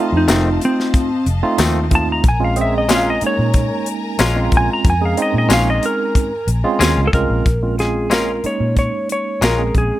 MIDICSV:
0, 0, Header, 1, 8, 480
1, 0, Start_track
1, 0, Key_signature, -5, "minor"
1, 0, Tempo, 652174
1, 1648, Time_signature, 4, 2, 24, 8
1, 7358, End_track
2, 0, Start_track
2, 0, Title_t, "String section"
2, 0, Program_c, 0, 48
2, 0, Note_on_c, 0, 75, 77
2, 0, Note_on_c, 0, 77, 68
2, 0, Note_on_c, 0, 81, 80
2, 1621, Note_off_c, 0, 77, 0
2, 1622, Note_off_c, 0, 81, 0
2, 1623, Note_off_c, 0, 75, 0
2, 1653, Note_on_c, 0, 82, 90
2, 1655, Note_on_c, 0, 70, 73
2, 1655, Note_on_c, 0, 80, 75
2, 5459, Note_off_c, 0, 82, 0
2, 5460, Note_off_c, 0, 70, 0
2, 5460, Note_off_c, 0, 80, 0
2, 7358, End_track
3, 0, Start_track
3, 0, Title_t, "Electric slide guitar"
3, 0, Program_c, 1, 29
3, 0, Note_on_c, 1, 65, 86
3, 102, Note_off_c, 1, 65, 0
3, 126, Note_on_c, 1, 63, 83
3, 456, Note_off_c, 1, 63, 0
3, 478, Note_on_c, 1, 60, 98
3, 929, Note_off_c, 1, 60, 0
3, 1436, Note_on_c, 1, 81, 88
3, 1541, Note_off_c, 1, 81, 0
3, 1562, Note_on_c, 1, 82, 80
3, 1661, Note_off_c, 1, 82, 0
3, 1682, Note_on_c, 1, 80, 91
3, 1784, Note_off_c, 1, 80, 0
3, 1799, Note_on_c, 1, 77, 90
3, 1899, Note_off_c, 1, 77, 0
3, 1923, Note_on_c, 1, 76, 89
3, 2024, Note_off_c, 1, 76, 0
3, 2045, Note_on_c, 1, 75, 93
3, 2142, Note_off_c, 1, 75, 0
3, 2161, Note_on_c, 1, 77, 91
3, 2263, Note_off_c, 1, 77, 0
3, 2282, Note_on_c, 1, 75, 94
3, 2380, Note_off_c, 1, 75, 0
3, 2403, Note_on_c, 1, 73, 92
3, 2851, Note_off_c, 1, 73, 0
3, 3364, Note_on_c, 1, 80, 94
3, 3464, Note_off_c, 1, 80, 0
3, 3484, Note_on_c, 1, 82, 90
3, 3581, Note_off_c, 1, 82, 0
3, 3604, Note_on_c, 1, 80, 91
3, 3704, Note_off_c, 1, 80, 0
3, 3720, Note_on_c, 1, 77, 90
3, 3818, Note_off_c, 1, 77, 0
3, 3843, Note_on_c, 1, 75, 88
3, 3944, Note_off_c, 1, 75, 0
3, 3962, Note_on_c, 1, 75, 95
3, 4059, Note_off_c, 1, 75, 0
3, 4072, Note_on_c, 1, 77, 102
3, 4178, Note_off_c, 1, 77, 0
3, 4194, Note_on_c, 1, 75, 96
3, 4296, Note_off_c, 1, 75, 0
3, 4310, Note_on_c, 1, 70, 99
3, 4764, Note_off_c, 1, 70, 0
3, 5207, Note_on_c, 1, 69, 82
3, 5252, Note_off_c, 1, 69, 0
3, 5257, Note_on_c, 1, 70, 104
3, 5702, Note_off_c, 1, 70, 0
3, 5741, Note_on_c, 1, 68, 84
3, 5981, Note_off_c, 1, 68, 0
3, 5986, Note_on_c, 1, 70, 89
3, 6224, Note_off_c, 1, 70, 0
3, 6229, Note_on_c, 1, 73, 91
3, 6458, Note_off_c, 1, 73, 0
3, 6467, Note_on_c, 1, 73, 92
3, 6682, Note_off_c, 1, 73, 0
3, 6714, Note_on_c, 1, 73, 90
3, 6949, Note_off_c, 1, 73, 0
3, 6952, Note_on_c, 1, 70, 84
3, 7188, Note_off_c, 1, 70, 0
3, 7197, Note_on_c, 1, 68, 77
3, 7358, Note_off_c, 1, 68, 0
3, 7358, End_track
4, 0, Start_track
4, 0, Title_t, "Tine electric piano"
4, 0, Program_c, 2, 4
4, 0, Note_on_c, 2, 57, 88
4, 0, Note_on_c, 2, 60, 80
4, 0, Note_on_c, 2, 63, 81
4, 0, Note_on_c, 2, 65, 96
4, 800, Note_off_c, 2, 57, 0
4, 800, Note_off_c, 2, 60, 0
4, 800, Note_off_c, 2, 63, 0
4, 800, Note_off_c, 2, 65, 0
4, 1051, Note_on_c, 2, 57, 108
4, 1052, Note_on_c, 2, 60, 94
4, 1052, Note_on_c, 2, 63, 100
4, 1052, Note_on_c, 2, 65, 123
4, 1359, Note_off_c, 2, 57, 0
4, 1360, Note_off_c, 2, 60, 0
4, 1360, Note_off_c, 2, 63, 0
4, 1360, Note_off_c, 2, 65, 0
4, 1403, Note_on_c, 2, 63, 69
4, 1404, Note_on_c, 2, 57, 74
4, 1404, Note_on_c, 2, 60, 70
4, 1404, Note_on_c, 2, 65, 77
4, 1645, Note_off_c, 2, 63, 0
4, 1646, Note_off_c, 2, 57, 0
4, 1646, Note_off_c, 2, 60, 0
4, 1646, Note_off_c, 2, 65, 0
4, 1767, Note_on_c, 2, 61, 80
4, 1767, Note_on_c, 2, 65, 95
4, 1768, Note_on_c, 2, 60, 82
4, 1769, Note_on_c, 2, 56, 89
4, 1870, Note_off_c, 2, 60, 0
4, 1870, Note_off_c, 2, 61, 0
4, 1870, Note_off_c, 2, 65, 0
4, 1871, Note_off_c, 2, 56, 0
4, 1884, Note_on_c, 2, 56, 80
4, 1884, Note_on_c, 2, 60, 79
4, 1886, Note_on_c, 2, 61, 75
4, 1886, Note_on_c, 2, 68, 91
4, 2093, Note_off_c, 2, 56, 0
4, 2093, Note_off_c, 2, 60, 0
4, 2094, Note_off_c, 2, 61, 0
4, 2094, Note_off_c, 2, 68, 0
4, 2128, Note_on_c, 2, 60, 73
4, 2129, Note_on_c, 2, 61, 72
4, 2130, Note_on_c, 2, 56, 82
4, 2130, Note_on_c, 2, 65, 85
4, 2335, Note_off_c, 2, 60, 0
4, 2336, Note_off_c, 2, 56, 0
4, 2336, Note_off_c, 2, 61, 0
4, 2336, Note_off_c, 2, 65, 0
4, 2368, Note_on_c, 2, 58, 67
4, 2370, Note_on_c, 2, 61, 69
4, 2372, Note_on_c, 2, 56, 77
4, 2372, Note_on_c, 2, 63, 86
4, 3091, Note_off_c, 2, 58, 0
4, 3092, Note_off_c, 2, 61, 0
4, 3093, Note_off_c, 2, 56, 0
4, 3093, Note_off_c, 2, 63, 0
4, 3211, Note_on_c, 2, 56, 92
4, 3212, Note_on_c, 2, 61, 79
4, 3213, Note_on_c, 2, 60, 84
4, 3213, Note_on_c, 2, 65, 102
4, 3622, Note_off_c, 2, 56, 0
4, 3623, Note_off_c, 2, 60, 0
4, 3623, Note_off_c, 2, 61, 0
4, 3623, Note_off_c, 2, 65, 0
4, 3688, Note_on_c, 2, 56, 80
4, 3689, Note_on_c, 2, 60, 71
4, 3690, Note_on_c, 2, 61, 69
4, 3692, Note_on_c, 2, 68, 89
4, 3790, Note_off_c, 2, 56, 0
4, 3790, Note_off_c, 2, 60, 0
4, 3790, Note_off_c, 2, 61, 0
4, 3791, Note_off_c, 2, 68, 0
4, 3807, Note_on_c, 2, 56, 86
4, 3807, Note_on_c, 2, 61, 78
4, 3808, Note_on_c, 2, 60, 86
4, 3809, Note_on_c, 2, 63, 99
4, 4636, Note_off_c, 2, 56, 0
4, 4636, Note_off_c, 2, 61, 0
4, 4637, Note_off_c, 2, 60, 0
4, 4637, Note_off_c, 2, 63, 0
4, 4888, Note_on_c, 2, 56, 119
4, 4888, Note_on_c, 2, 65, 124
4, 4889, Note_on_c, 2, 60, 96
4, 4891, Note_on_c, 2, 61, 98
4, 5197, Note_off_c, 2, 56, 0
4, 5197, Note_off_c, 2, 65, 0
4, 5198, Note_off_c, 2, 60, 0
4, 5199, Note_off_c, 2, 61, 0
4, 5252, Note_on_c, 2, 56, 93
4, 5253, Note_on_c, 2, 60, 80
4, 5255, Note_on_c, 2, 61, 80
4, 5256, Note_on_c, 2, 65, 100
4, 5489, Note_off_c, 2, 56, 0
4, 5490, Note_off_c, 2, 60, 0
4, 5491, Note_off_c, 2, 61, 0
4, 5491, Note_off_c, 2, 65, 0
4, 5612, Note_on_c, 2, 56, 73
4, 5614, Note_on_c, 2, 60, 67
4, 5614, Note_on_c, 2, 61, 66
4, 5614, Note_on_c, 2, 65, 76
4, 5712, Note_off_c, 2, 56, 0
4, 5713, Note_off_c, 2, 60, 0
4, 5713, Note_off_c, 2, 61, 0
4, 5713, Note_off_c, 2, 65, 0
4, 5733, Note_on_c, 2, 60, 59
4, 5733, Note_on_c, 2, 61, 60
4, 5734, Note_on_c, 2, 56, 66
4, 5734, Note_on_c, 2, 65, 77
4, 5938, Note_off_c, 2, 56, 0
4, 5938, Note_off_c, 2, 60, 0
4, 5938, Note_off_c, 2, 61, 0
4, 5938, Note_off_c, 2, 65, 0
4, 5974, Note_on_c, 2, 60, 59
4, 5976, Note_on_c, 2, 56, 67
4, 5976, Note_on_c, 2, 61, 60
4, 5976, Note_on_c, 2, 65, 76
4, 6178, Note_off_c, 2, 60, 0
4, 6179, Note_off_c, 2, 56, 0
4, 6179, Note_off_c, 2, 61, 0
4, 6179, Note_off_c, 2, 65, 0
4, 6214, Note_on_c, 2, 61, 57
4, 6214, Note_on_c, 2, 63, 71
4, 6215, Note_on_c, 2, 56, 63
4, 6216, Note_on_c, 2, 58, 56
4, 6937, Note_off_c, 2, 56, 0
4, 6937, Note_off_c, 2, 58, 0
4, 6937, Note_off_c, 2, 61, 0
4, 6937, Note_off_c, 2, 63, 0
4, 7055, Note_on_c, 2, 56, 76
4, 7055, Note_on_c, 2, 60, 69
4, 7056, Note_on_c, 2, 61, 67
4, 7056, Note_on_c, 2, 68, 84
4, 7358, Note_off_c, 2, 56, 0
4, 7358, Note_off_c, 2, 60, 0
4, 7358, Note_off_c, 2, 61, 0
4, 7358, Note_off_c, 2, 68, 0
4, 7358, End_track
5, 0, Start_track
5, 0, Title_t, "Clean electric guitar"
5, 0, Program_c, 3, 27
5, 204, Note_on_c, 3, 41, 90
5, 208, Note_on_c, 3, 51, 84
5, 213, Note_on_c, 3, 57, 90
5, 217, Note_on_c, 3, 60, 99
5, 353, Note_off_c, 3, 41, 0
5, 355, Note_off_c, 3, 51, 0
5, 357, Note_off_c, 3, 57, 0
5, 359, Note_off_c, 3, 60, 0
5, 1166, Note_on_c, 3, 41, 94
5, 1169, Note_on_c, 3, 51, 100
5, 1174, Note_on_c, 3, 57, 98
5, 1178, Note_on_c, 3, 60, 95
5, 1313, Note_off_c, 3, 41, 0
5, 1314, Note_off_c, 3, 51, 0
5, 1317, Note_off_c, 3, 57, 0
5, 1319, Note_off_c, 3, 60, 0
5, 2124, Note_on_c, 3, 46, 80
5, 2129, Note_on_c, 3, 56, 80
5, 2134, Note_on_c, 3, 61, 94
5, 2138, Note_on_c, 3, 65, 90
5, 2272, Note_off_c, 3, 46, 0
5, 2274, Note_off_c, 3, 56, 0
5, 2276, Note_off_c, 3, 61, 0
5, 2279, Note_off_c, 3, 65, 0
5, 3084, Note_on_c, 3, 46, 95
5, 3087, Note_on_c, 3, 56, 106
5, 3091, Note_on_c, 3, 61, 100
5, 3096, Note_on_c, 3, 65, 110
5, 3231, Note_off_c, 3, 46, 0
5, 3233, Note_off_c, 3, 56, 0
5, 3235, Note_off_c, 3, 61, 0
5, 3237, Note_off_c, 3, 65, 0
5, 4040, Note_on_c, 3, 46, 93
5, 4047, Note_on_c, 3, 56, 87
5, 4051, Note_on_c, 3, 61, 85
5, 4053, Note_on_c, 3, 65, 96
5, 4189, Note_off_c, 3, 46, 0
5, 4192, Note_off_c, 3, 56, 0
5, 4194, Note_off_c, 3, 61, 0
5, 4195, Note_off_c, 3, 65, 0
5, 5000, Note_on_c, 3, 46, 93
5, 5005, Note_on_c, 3, 56, 107
5, 5008, Note_on_c, 3, 61, 103
5, 5012, Note_on_c, 3, 65, 112
5, 5149, Note_off_c, 3, 46, 0
5, 5152, Note_off_c, 3, 56, 0
5, 5153, Note_off_c, 3, 61, 0
5, 5155, Note_off_c, 3, 65, 0
5, 5961, Note_on_c, 3, 46, 76
5, 5965, Note_on_c, 3, 56, 79
5, 5969, Note_on_c, 3, 61, 79
5, 5973, Note_on_c, 3, 65, 81
5, 6110, Note_off_c, 3, 46, 0
5, 6112, Note_off_c, 3, 56, 0
5, 6114, Note_off_c, 3, 61, 0
5, 6116, Note_off_c, 3, 65, 0
5, 6929, Note_on_c, 3, 46, 67
5, 6933, Note_on_c, 3, 56, 75
5, 6937, Note_on_c, 3, 61, 78
5, 6939, Note_on_c, 3, 65, 83
5, 7075, Note_off_c, 3, 46, 0
5, 7077, Note_off_c, 3, 56, 0
5, 7079, Note_off_c, 3, 61, 0
5, 7080, Note_off_c, 3, 65, 0
5, 7358, End_track
6, 0, Start_track
6, 0, Title_t, "Fingered electric bass"
6, 0, Program_c, 4, 33
6, 92, Note_on_c, 4, 41, 82
6, 198, Note_off_c, 4, 41, 0
6, 205, Note_on_c, 4, 29, 107
6, 423, Note_off_c, 4, 29, 0
6, 930, Note_on_c, 4, 29, 90
6, 1040, Note_off_c, 4, 29, 0
6, 1167, Note_on_c, 4, 39, 97
6, 1618, Note_off_c, 4, 39, 0
6, 1647, Note_on_c, 4, 34, 99
6, 2337, Note_off_c, 4, 34, 0
6, 2493, Note_on_c, 4, 46, 97
6, 2707, Note_off_c, 4, 46, 0
6, 3086, Note_on_c, 4, 34, 93
6, 3302, Note_off_c, 4, 34, 0
6, 3326, Note_on_c, 4, 34, 99
6, 3437, Note_off_c, 4, 34, 0
6, 3568, Note_on_c, 4, 41, 108
6, 3783, Note_off_c, 4, 41, 0
6, 3930, Note_on_c, 4, 46, 93
6, 4035, Note_off_c, 4, 46, 0
6, 4039, Note_on_c, 4, 34, 110
6, 4258, Note_off_c, 4, 34, 0
6, 4765, Note_on_c, 4, 34, 102
6, 4876, Note_off_c, 4, 34, 0
6, 5003, Note_on_c, 4, 39, 94
6, 5115, Note_off_c, 4, 39, 0
6, 5130, Note_on_c, 4, 37, 86
6, 5235, Note_off_c, 4, 37, 0
6, 5247, Note_on_c, 4, 36, 100
6, 5357, Note_off_c, 4, 36, 0
6, 5370, Note_on_c, 4, 34, 94
6, 5475, Note_off_c, 4, 34, 0
6, 5489, Note_on_c, 4, 34, 82
6, 6179, Note_off_c, 4, 34, 0
6, 6331, Note_on_c, 4, 46, 73
6, 6548, Note_off_c, 4, 46, 0
6, 6930, Note_on_c, 4, 34, 85
6, 7146, Note_off_c, 4, 34, 0
6, 7174, Note_on_c, 4, 34, 87
6, 7283, Note_off_c, 4, 34, 0
6, 7358, End_track
7, 0, Start_track
7, 0, Title_t, "Muted fingered electric bass strokes"
7, 2369, Note_on_c, 9, 29, 39
7, 2442, Note_off_c, 9, 29, 0
7, 6209, Note_on_c, 9, 29, 32
7, 6283, Note_off_c, 9, 29, 0
7, 7358, End_track
8, 0, Start_track
8, 0, Title_t, "Drums"
8, 209, Note_on_c, 9, 42, 89
8, 209, Note_on_c, 9, 54, 114
8, 220, Note_on_c, 9, 38, 118
8, 282, Note_off_c, 9, 42, 0
8, 282, Note_off_c, 9, 54, 0
8, 294, Note_off_c, 9, 38, 0
8, 452, Note_on_c, 9, 42, 72
8, 526, Note_off_c, 9, 42, 0
8, 588, Note_on_c, 9, 38, 34
8, 661, Note_off_c, 9, 38, 0
8, 691, Note_on_c, 9, 36, 92
8, 691, Note_on_c, 9, 42, 87
8, 764, Note_off_c, 9, 36, 0
8, 765, Note_off_c, 9, 42, 0
8, 930, Note_on_c, 9, 42, 73
8, 1004, Note_off_c, 9, 42, 0
8, 1166, Note_on_c, 9, 42, 94
8, 1166, Note_on_c, 9, 54, 125
8, 1177, Note_on_c, 9, 38, 127
8, 1239, Note_off_c, 9, 42, 0
8, 1239, Note_off_c, 9, 54, 0
8, 1251, Note_off_c, 9, 38, 0
8, 1407, Note_on_c, 9, 42, 67
8, 1409, Note_on_c, 9, 36, 93
8, 1480, Note_off_c, 9, 42, 0
8, 1482, Note_off_c, 9, 36, 0
8, 1647, Note_on_c, 9, 42, 89
8, 1648, Note_on_c, 9, 36, 115
8, 1720, Note_off_c, 9, 42, 0
8, 1722, Note_off_c, 9, 36, 0
8, 1885, Note_on_c, 9, 42, 59
8, 1958, Note_off_c, 9, 42, 0
8, 2127, Note_on_c, 9, 42, 87
8, 2127, Note_on_c, 9, 54, 123
8, 2139, Note_on_c, 9, 38, 118
8, 2201, Note_off_c, 9, 42, 0
8, 2201, Note_off_c, 9, 54, 0
8, 2213, Note_off_c, 9, 38, 0
8, 2364, Note_on_c, 9, 42, 68
8, 2438, Note_off_c, 9, 42, 0
8, 2603, Note_on_c, 9, 42, 84
8, 2607, Note_on_c, 9, 36, 92
8, 2677, Note_off_c, 9, 42, 0
8, 2680, Note_off_c, 9, 36, 0
8, 2843, Note_on_c, 9, 42, 67
8, 2917, Note_off_c, 9, 42, 0
8, 3082, Note_on_c, 9, 42, 88
8, 3082, Note_on_c, 9, 54, 127
8, 3094, Note_on_c, 9, 38, 127
8, 3156, Note_off_c, 9, 42, 0
8, 3156, Note_off_c, 9, 54, 0
8, 3168, Note_off_c, 9, 38, 0
8, 3326, Note_on_c, 9, 42, 70
8, 3327, Note_on_c, 9, 36, 94
8, 3399, Note_off_c, 9, 42, 0
8, 3401, Note_off_c, 9, 36, 0
8, 3567, Note_on_c, 9, 36, 122
8, 3567, Note_on_c, 9, 42, 93
8, 3640, Note_off_c, 9, 42, 0
8, 3641, Note_off_c, 9, 36, 0
8, 3808, Note_on_c, 9, 42, 65
8, 3882, Note_off_c, 9, 42, 0
8, 4047, Note_on_c, 9, 42, 94
8, 4047, Note_on_c, 9, 54, 116
8, 4059, Note_on_c, 9, 38, 114
8, 4121, Note_off_c, 9, 42, 0
8, 4121, Note_off_c, 9, 54, 0
8, 4133, Note_off_c, 9, 38, 0
8, 4289, Note_on_c, 9, 42, 71
8, 4362, Note_off_c, 9, 42, 0
8, 4528, Note_on_c, 9, 36, 91
8, 4528, Note_on_c, 9, 42, 94
8, 4601, Note_off_c, 9, 36, 0
8, 4602, Note_off_c, 9, 42, 0
8, 4768, Note_on_c, 9, 42, 69
8, 4842, Note_off_c, 9, 42, 0
8, 5010, Note_on_c, 9, 42, 92
8, 5010, Note_on_c, 9, 54, 125
8, 5022, Note_on_c, 9, 38, 119
8, 5083, Note_off_c, 9, 42, 0
8, 5083, Note_off_c, 9, 54, 0
8, 5095, Note_off_c, 9, 38, 0
8, 5249, Note_on_c, 9, 36, 96
8, 5252, Note_on_c, 9, 42, 72
8, 5323, Note_off_c, 9, 36, 0
8, 5326, Note_off_c, 9, 42, 0
8, 5489, Note_on_c, 9, 36, 99
8, 5489, Note_on_c, 9, 42, 79
8, 5563, Note_off_c, 9, 36, 0
8, 5563, Note_off_c, 9, 42, 0
8, 5732, Note_on_c, 9, 42, 51
8, 5743, Note_on_c, 9, 38, 30
8, 5805, Note_off_c, 9, 42, 0
8, 5817, Note_off_c, 9, 38, 0
8, 5969, Note_on_c, 9, 42, 71
8, 5969, Note_on_c, 9, 54, 101
8, 5981, Note_on_c, 9, 38, 104
8, 6043, Note_off_c, 9, 42, 0
8, 6043, Note_off_c, 9, 54, 0
8, 6054, Note_off_c, 9, 38, 0
8, 6211, Note_on_c, 9, 42, 52
8, 6284, Note_off_c, 9, 42, 0
8, 6451, Note_on_c, 9, 42, 75
8, 6452, Note_on_c, 9, 36, 76
8, 6525, Note_off_c, 9, 36, 0
8, 6525, Note_off_c, 9, 42, 0
8, 6693, Note_on_c, 9, 42, 57
8, 6767, Note_off_c, 9, 42, 0
8, 6934, Note_on_c, 9, 42, 82
8, 6934, Note_on_c, 9, 54, 102
8, 6946, Note_on_c, 9, 38, 107
8, 7008, Note_off_c, 9, 42, 0
8, 7008, Note_off_c, 9, 54, 0
8, 7019, Note_off_c, 9, 38, 0
8, 7173, Note_on_c, 9, 36, 71
8, 7174, Note_on_c, 9, 42, 57
8, 7247, Note_off_c, 9, 36, 0
8, 7247, Note_off_c, 9, 42, 0
8, 7358, End_track
0, 0, End_of_file